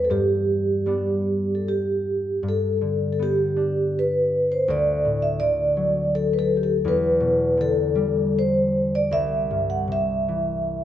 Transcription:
0.00 0.15 E2 medium
0.00 0.15 G3 medium
0.00 1.19 E4 soft
0.00 0.16 F#5 soft
0.04 0.11 A4 medium
0.10 2.42 G2 medium
0.10 1.60 G4 medium
0.86 2.48 G3 soft
0.86 3.19 B3 soft
0.86 3.56 D4 soft
1.55 1.63 A4 soft
1.68 2.47 G4 medium
2.43 4.73 G2 medium
2.49 3.11 A4 medium
2.81 4.73 D3 soft
3.13 3.19 A4 soft
3.19 6.30 B3 soft
3.19 3.98 G4 medium
3.56 6.36 D4 soft
3.99 4.54 B4 medium
4.52 4.70 C5 medium
4.68 6.91 D2 medium
4.68 5.25 D5 medium
5.05 5.46 A2 soft
5.22 5.41 E5 medium
5.40 6.91 D3 medium
5.40 6.15 D5 loud
5.77 6.91 F#3 soft
6.15 6.35 A4 medium
6.33 6.37 B4 medium
6.39 6.59 A4 medium
6.57 6.61 G4 medium
6.63 6.87 A4 medium
6.85 9.17 E2 medium
6.85 7.63 B4 medium
7.20 7.64 B2 medium
7.57 9.17 D3 medium
7.57 8.38 A4 loud
7.95 9.17 G3 medium
8.39 8.91 C5 medium
8.95 9.14 D5 medium
9.11 10.84 C2 medium
9.11 9.72 E5 loud
9.51 9.95 G2 soft
9.70 9.90 F#5 medium
9.88 10.84 C3 soft
9.92 10.84 E5 loud
10.28 10.84 E3 soft

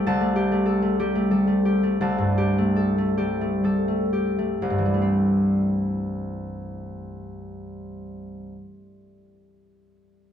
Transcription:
0.00 0.20 A3 medium
0.00 0.35 G4 medium
0.00 0.26 E5 loud
0.07 2.00 C2 loud
0.07 2.00 A5 loud
0.21 0.50 A3 medium
0.36 0.98 G4 medium
0.52 0.81 A3 medium
0.66 1.21 A4 medium
0.82 1.14 A3 medium
0.99 1.27 G3 medium
0.99 1.64 G4 medium
1.15 1.46 A3 medium
1.31 1.61 G3 medium
1.31 1.90 A4 medium
1.47 1.82 A3 medium
1.65 2.37 G4 medium
1.83 2.57 A3 medium
2.01 4.61 C2 medium
2.01 5.92 A5 medium
2.18 4.67 G2 medium
2.38 3.16 G4 medium
2.58 2.97 A3 medium
2.76 3.51 A4 medium
2.98 3.40 A3 medium
3.17 3.57 G3 medium
3.17 4.12 G4 medium
3.41 3.87 A3 medium
3.64 4.06 G3 medium
3.64 4.49 A4 medium
3.88 4.37 A3 medium
4.13 8.03 G4 medium
4.39 4.92 A3 medium
4.62 8.52 C2 medium
4.70 8.60 G2 medium
4.78 8.68 E3 medium
4.86 8.42 G3 medium
4.94 8.38 A3 medium
5.01 8.46 C4 medium

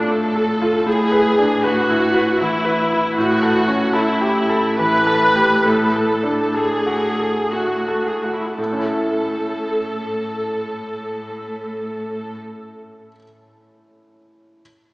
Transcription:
0.00 0.81 A2 soft
0.00 3.11 A2 soft
0.00 0.89 D4 soft
0.00 0.62 F4 soft
0.00 0.36 A4 soft
0.08 0.50 A3 soft
0.08 0.87 A4 medium
0.36 0.77 A4 soft
0.62 0.87 F4 soft
0.86 3.11 A2 soft
0.86 1.64 G#4 medium
1.12 1.53 B4 soft
1.38 1.79 D4 soft
1.64 2.39 F#4 medium
1.64 2.04 B4 soft
1.89 2.29 E4 soft
2.14 2.54 B4 soft
2.41 2.80 E3 soft
2.41 3.16 E4 medium
2.65 3.05 B4 soft
2.92 3.16 E4 soft
3.16 8.27 A2 soft
3.16 5.62 A2 soft
3.16 3.92 F#4 medium
3.43 3.83 A4 soft
3.68 4.10 C#4 soft
3.93 4.80 E4 medium
3.93 4.38 A4 soft
4.21 4.68 G4 soft
4.49 4.96 A4 soft
4.79 5.25 E3 soft
4.79 5.64 B4 medium
5.07 5.53 A4 soft
5.36 5.65 G4 soft
5.66 8.54 A2 soft
5.66 6.54 A4 soft
5.96 6.42 A4 soft
6.23 6.72 D4 soft
6.54 7.52 G#4 medium
6.54 7.05 A4 soft
6.86 7.39 F#4 soft
7.20 7.74 A4 soft
7.53 8.10 A3 soft
7.53 8.08 F#4 soft
7.88 8.45 A4 soft
8.07 8.20 G#4 soft
8.21 8.33 F#4 soft
8.21 8.58 F#4 soft
8.34 8.46 E4 soft
8.45 8.58 F#4 soft
8.58 13.08 A2 soft
8.58 12.38 A2 soft
8.58 12.38 A4 soft
8.65 13.11 A3 soft
8.73 13.15 C#4 soft
8.79 13.18 E4 soft
8.86 13.22 A4 soft
8.93 13.25 E5 soft

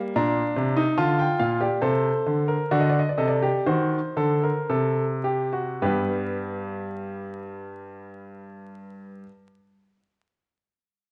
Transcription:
0.00 0.13 G3 medium
0.00 0.13 A#3 medium
0.16 0.41 A#2 medium
0.16 0.75 D4 medium
0.16 0.95 A#5 medium
0.56 0.82 C3 medium
0.77 0.97 D#4 loud
0.98 1.24 D3 medium
0.98 1.59 F4 medium
0.98 1.18 A5 medium
1.19 1.39 G5 medium
1.39 1.66 A#2 medium
1.39 1.60 F5 medium
1.60 1.81 G4 medium
1.60 1.82 D5 medium
1.81 2.09 C3 medium
1.81 2.46 A4 medium
1.81 2.68 C5 medium
2.26 2.54 D3 medium
2.48 2.70 A#4 medium
2.71 3.00 D3 medium
2.71 3.00 F#4 medium
2.71 2.81 D5 medium
2.80 2.90 D#5 medium
2.90 2.99 D5 medium
2.99 3.09 D#5 medium
3.09 3.18 D5 medium
3.18 3.48 C3 medium
3.18 3.41 A4 medium
3.18 3.27 D#5 medium
3.28 3.65 D5 medium
3.42 3.66 G4 medium
3.66 3.97 D#3 medium
3.66 3.97 F#4 medium
3.66 4.66 C5 medium
4.16 4.49 D3 medium
4.16 4.42 A4 medium
4.43 4.68 A#4 medium
4.70 5.79 C3 medium
4.70 5.04 A4 medium
5.24 5.52 G4 medium
5.53 5.81 F#4 medium
5.82 9.22 G2 medium
5.82 9.26 G3 medium
5.82 9.26 B3 medium
5.82 9.23 G4 medium
5.82 9.23 B4 medium

